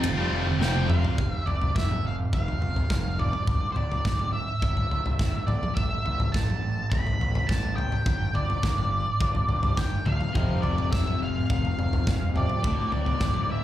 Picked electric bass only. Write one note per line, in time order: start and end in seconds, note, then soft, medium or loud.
0.03 0.23 F1 loud
0.31 0.51 F1 medium
0.59 0.98 F1 loud
1.18 1.38 F1 medium
1.46 1.66 F1 medium
1.76 1.95 F1 medium
2.03 2.23 F1 medium
2.33 2.52 F1 medium
2.60 2.80 F1 medium
2.90 3.29 F1 medium
3.47 3.67 D1 medium
3.76 3.95 D1 medium
4.05 4.44 D1 medium
4.62 4.82 D1 medium
4.90 5.09 D1 medium
5.19 5.39 D1 medium
5.47 5.67 A1 medium
5.77 5.96 A1 medium
6.04 6.24 A1 medium
6.35 6.54 A1 medium
6.61 6.81 A1 medium
6.92 7.11 A1 medium
7.20 7.39 A1 medium
7.49 7.88 A1 medium
8.06 8.26 G1 medium
8.33 8.53 G1 medium
8.64 9.03 G1 medium
9.21 9.40 G1 medium
9.49 9.68 G1 medium
9.78 9.97 G1 medium
10.06 10.26 D2 medium
10.35 10.55 F1 medium
10.64 10.83 F1 medium
10.93 11.12 F1 medium
11.21 11.40 F1 medium
11.50 11.69 F1 medium
11.78 11.97 F1 medium
12.08 12.46 E1 medium
12.64 12.83 D1 medium
12.91 13.11 D1 medium
13.21 13.60 D1 medium